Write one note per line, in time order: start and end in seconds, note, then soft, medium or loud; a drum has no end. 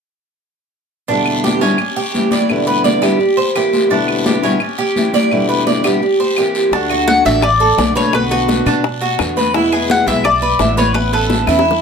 1.08 1.61 E2 medium
1.08 1.61 B2 medium
1.08 1.61 D3 medium
1.08 1.62 G3 medium
1.08 1.60 B3 medium
1.08 1.43 D4 medium
1.08 1.60 E4 medium
1.08 high conga soft
1.08 long guiro medium
1.26 high conga soft
1.26 claves medium
1.44 1.61 G4 medium
1.44 high conga medium
1.44 short guiro medium
1.61 1.78 B2 soft
1.61 1.79 D3 soft
1.61 1.78 G3 medium
1.61 1.78 B3 medium
1.61 1.96 C#4 medium
1.61 1.78 E4 medium
1.61 high conga soft
1.61 short guiro medium
1.78 muted steel-string acoustic guitar stroke soft
1.78 high conga soft
1.78 long guiro medium
1.78 claves medium
1.96 2.31 G4 medium
1.96 high conga soft
2.14 2.49 E3 soft
2.14 2.49 G3 soft
2.14 2.50 C#4 soft
2.14 2.49 E4 soft
2.14 high conga medium
2.14 short guiro medium
2.31 2.66 D5 medium
2.31 high conga medium
2.31 short guiro medium
2.49 3.01 E2 medium
2.49 3.02 B2 medium
2.49 3.02 D3 medium
2.49 3.03 G3 medium
2.49 3.02 B3 medium
2.49 3.02 E4 medium
2.49 high conga soft
2.49 long guiro medium
2.49 claves medium
2.67 2.84 B4 medium
2.67 high conga soft
2.84 3.02 D5 medium
2.84 high conga medium
2.84 short guiro medium
3.02 3.19 B2 soft
3.02 3.20 D3 medium
3.02 3.20 G3 medium
3.02 3.20 B3 medium
3.02 3.19 E4 medium
3.02 3.36 G4 medium
3.02 high conga soft
3.02 short guiro medium
3.02 claves medium
3.20 muted steel-string acoustic guitar stroke soft
3.20 high conga soft
3.20 long guiro medium
3.37 3.54 C5 medium
3.37 high conga soft
3.55 3.90 E3 soft
3.55 3.90 A#3 soft
3.55 3.90 C4 soft
3.55 3.91 E4 soft
3.55 3.90 G4 medium
3.55 high conga soft
3.55 short guiro medium
3.55 claves medium
3.73 high conga medium
3.73 short guiro medium
3.90 4.42 E2 medium
3.90 4.43 B2 medium
3.90 4.43 D3 medium
3.90 4.43 G3 medium
3.90 4.42 B3 medium
3.90 4.25 D4 medium
3.90 4.42 E4 medium
3.90 high conga soft
3.90 long guiro medium
4.08 high conga soft
4.08 claves medium
4.26 4.43 G4 medium
4.26 high conga medium
4.26 short guiro medium
4.42 4.60 B2 medium
4.42 4.60 D3 medium
4.42 4.59 G3 medium
4.42 4.60 B3 medium
4.42 4.78 C#4 medium
4.42 4.60 E4 medium
4.42 high conga soft
4.42 short guiro medium
4.60 muted steel-string acoustic guitar stroke soft
4.60 high conga soft
4.60 long guiro medium
4.60 claves medium
4.78 5.13 G4 medium
4.78 high conga soft
4.95 5.30 E3 soft
4.95 5.31 G3 soft
4.95 5.31 C#4 soft
4.95 5.31 E4 soft
4.95 high conga medium
4.95 short guiro medium
5.13 5.48 D5 medium
5.13 high conga medium
5.13 short guiro medium
5.30 5.83 E2 medium
5.30 5.83 B2 medium
5.30 5.84 D3 medium
5.30 5.84 G3 medium
5.30 5.84 B3 medium
5.30 5.83 E4 medium
5.30 high conga soft
5.30 long guiro medium
5.30 claves medium
5.49 5.66 B4 medium
5.49 high conga soft
5.67 5.84 D5 medium
5.67 high conga medium
5.67 short guiro medium
5.84 6.02 B2 soft
5.84 6.02 D3 soft
5.84 6.02 G3 medium
5.84 6.02 B3 medium
5.84 6.01 E4 medium
5.84 6.18 G4 medium
5.84 high conga soft
5.84 short guiro medium
5.84 claves medium
6.02 muted steel-string acoustic guitar stroke medium
6.02 high conga soft
6.02 long guiro medium
6.20 6.37 C5 medium
6.20 high conga soft
6.37 6.72 E3 soft
6.37 6.72 A#3 soft
6.37 6.73 C4 soft
6.37 6.73 E4 soft
6.37 6.72 G4 medium
6.37 high conga soft
6.37 short guiro medium
6.37 claves medium
6.55 short guiro medium
6.71 7.21 D2 medium
6.71 7.24 D3 medium
6.71 7.25 A3 medium
6.71 6.90 D4 medium
6.71 7.25 D4 medium
6.71 7.24 F#4 medium
6.71 high bongo medium
6.71 high conga soft
6.71 long guiro medium
6.90 7.24 F#4 medium
6.90 high conga soft
6.90 claves medium
7.08 7.25 F#5 medium
7.08 high bongo medium
7.08 high conga medium
7.08 short guiro medium
7.25 7.74 A1 medium
7.25 7.42 A3 medium
7.25 7.42 D4 medium
7.25 7.42 F#4 medium
7.25 7.60 D5 medium
7.25 7.44 E5 medium
7.25 high bongo soft
7.25 high conga soft
7.25 short guiro medium
7.42 7.96 D5 medium
7.42 muted steel-string acoustic guitar stroke medium
7.42 high bongo medium
7.42 high conga soft
7.42 long guiro medium
7.42 claves medium
7.60 7.77 A4 medium
7.60 high bongo soft
7.60 high conga soft
7.77 8.60 B1 medium
7.77 8.12 D3 soft
7.77 8.12 A3 soft
7.77 8.13 D4 soft
7.77 8.13 F#4 soft
7.77 7.95 D5 medium
7.77 high bongo medium
7.77 low bongo medium
7.77 high conga medium
7.77 short guiro medium
7.95 8.30 B4 medium
7.95 8.14 C#5 medium
7.95 high bongo soft
7.95 high conga medium
7.95 short guiro medium
8.13 8.65 B2 medium
8.13 8.65 D3 medium
8.13 8.67 B3 medium
8.13 8.66 D4 medium
8.13 8.65 F#4 medium
8.13 8.30 B4 medium
8.13 high bongo medium
8.13 high conga soft
8.13 long guiro medium
8.13 claves medium
8.31 8.65 F#4 medium
8.31 8.80 B4 medium
8.31 high bongo soft
8.31 high conga soft
8.48 high bongo soft
8.48 high conga medium
8.48 short guiro medium
8.66 9.15 B2 medium
8.66 8.83 D3 medium
8.66 8.84 B3 medium
8.66 9.00 D4 medium
8.66 8.83 D4 medium
8.66 8.83 F#4 medium
8.66 high conga soft
8.66 short guiro medium
8.66 claves medium
8.84 muted steel-string acoustic guitar stroke soft
8.84 high bongo medium
8.84 high conga soft
8.84 long guiro medium
9.01 9.35 F#4 medium
9.01 high bongo soft
9.01 high conga soft
9.18 10.01 E2 medium
9.18 9.53 D3 soft
9.18 9.53 B3 soft
9.18 9.54 D4 soft
9.18 9.54 F#4 soft
9.18 high bongo medium
9.18 low bongo medium
9.18 high conga soft
9.18 short guiro medium
9.18 claves medium
9.36 9.54 B4 medium
9.36 high bongo soft
9.36 high conga medium
9.36 short guiro medium
9.54 10.06 B2 medium
9.54 10.09 E3 medium
9.54 10.07 G#3 medium
9.54 10.07 B3 medium
9.54 9.71 E4 medium
9.54 10.06 E4 medium
9.54 high bongo medium
9.54 high conga soft
9.54 long guiro medium
9.72 10.06 G#4 medium
9.72 high conga soft
9.72 claves medium
9.90 10.07 F#5 loud
9.90 high bongo medium
9.90 high conga medium
9.90 short guiro medium
10.07 10.56 B1 loud
10.07 10.24 E3 medium
10.07 10.24 G#3 medium
10.07 10.24 B3 medium
10.07 10.24 E4 medium
10.07 10.41 E5 medium
10.07 10.24 E5 medium
10.07 high bongo soft
10.07 high conga soft
10.07 short guiro medium
10.24 10.78 D5 medium
10.24 muted steel-string acoustic guitar stroke soft
10.24 high bongo medium
10.24 high conga soft
10.24 long guiro medium
10.24 claves medium
10.42 10.59 B4 medium
10.42 high bongo soft
10.42 high conga soft
10.59 11.42 A1 medium
10.59 10.94 E3 soft
10.59 10.94 G#3 soft
10.59 10.94 B3 soft
10.59 10.95 E4 soft
10.59 10.77 E5 medium
10.59 high bongo medium
10.59 low bongo medium
10.59 high conga medium
10.59 short guiro medium
10.77 11.12 B4 medium
10.77 10.94 C#5 medium
10.77 high bongo soft
10.77 high conga medium
10.77 short guiro medium
10.94 11.47 E3 medium
10.94 11.48 B3 medium
10.94 11.47 C#4 medium
10.94 11.45 E4 medium
10.94 11.12 B4 medium
10.94 high bongo medium
10.94 high conga soft
10.94 long guiro medium
10.94 claves medium
11.12 11.47 A4 medium
11.12 11.62 B4 medium
11.12 high bongo soft
11.12 high conga soft
11.30 high bongo soft
11.30 high conga medium
11.30 short guiro medium
11.46 11.82 E2 loud
11.46 11.64 B3 medium
11.46 11.64 C#4 medium
11.46 11.64 E4 medium
11.46 11.82 E4 medium
11.46 high bongo medium
11.46 high conga soft
11.46 short guiro medium
11.46 claves medium
11.59 high bongo medium
11.65 muted steel-string acoustic guitar stroke soft
11.65 high conga soft
11.65 long guiro medium
11.71 low bongo medium